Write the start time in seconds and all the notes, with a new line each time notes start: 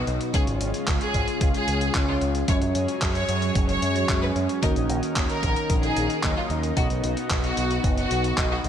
Already playing: B2 F#3 B3 D#4 F#4 D#5
0.07 B1, closed hi-hat
0.21 closed hi-hat
0.34 C#2 C#3 G#3 C#4 F4 G#4 C#5, kick, closed hi-hat
0.47 G#1, closed hi-hat
0.61 G#1, closed hi-hat
0.74 closed hi-hat
0.87 C#2, kick, clap, closed hi-hat
1.01 G#4, closed hi-hat
1.14 G#1, kick, closed hi-hat
1.28 closed hi-hat
1.41 C#2, kick, closed hi-hat
1.54 G#4, closed hi-hat
1.68 C#2, closed hi-hat
1.81 closed hi-hat
1.95 C#2 C#3 G#3 C#4 F4 C#5, kick, clap, closed hi-hat
2.08 F4
2.21 C#2, closed hi-hat
2.35 closed hi-hat
2.48 F#2 F#3 G#3 C#4 F#4 G#4 C#5, kick, closed hi-hat
2.62 F#2, closed hi-hat
2.75 F#2, closed hi-hat
2.88 closed hi-hat
3.02 F#2, kick, clap, closed hi-hat
3.15 C#5, closed hi-hat
3.29 F#2, closed hi-hat
3.42 closed hi-hat
3.55 F#1, kick, closed hi-hat
3.68 C#5, closed hi-hat
3.82 F#2, closed hi-hat
3.96 closed hi-hat
4.09 F#2 G#3 C#4 F#4 C#5, kick, clap, closed hi-hat
4.22 B4
4.36 F#2, closed hi-hat
4.49 closed hi-hat
4.62 D#2 D#3 A#3 D#4 F#4 A#4 D#5, kick, closed hi-hat
4.76 A#1, closed hi-hat
4.89 A#1, closed hi-hat
5.03 closed hi-hat
5.16 D#2, kick, clap, closed hi-hat
5.29 A#4, closed hi-hat
5.43 A#1, kick, closed hi-hat
5.56 closed hi-hat
5.70 A#1, kick, closed hi-hat
5.83 G#4, closed hi-hat
5.97 A#1, closed hi-hat
6.10 closed hi-hat
6.23 D#2 D#3 F#3 A#3 D#4 D#5, kick, clap, closed hi-hat
6.36 F4
6.50 D#2, closed hi-hat
6.63 closed hi-hat
6.77 B1 B2 B3 D#4 F#4 D#5, kick, closed hi-hat
6.90 B1, closed hi-hat
7.04 B1, closed hi-hat
7.17 closed hi-hat
7.30 B1, kick, clap, closed hi-hat
7.43 F#4, closed hi-hat
7.57 B1, closed hi-hat
7.71 closed hi-hat
7.84 F#1, kick, closed hi-hat
7.98 F#4, closed hi-hat
8.11 B1, closed hi-hat
8.24 closed hi-hat
8.38 B1 B2 B3 D#4 F#4 D#5, kick, clap, closed hi-hat
8.51 F#4
8.64 B1, closed hi-hat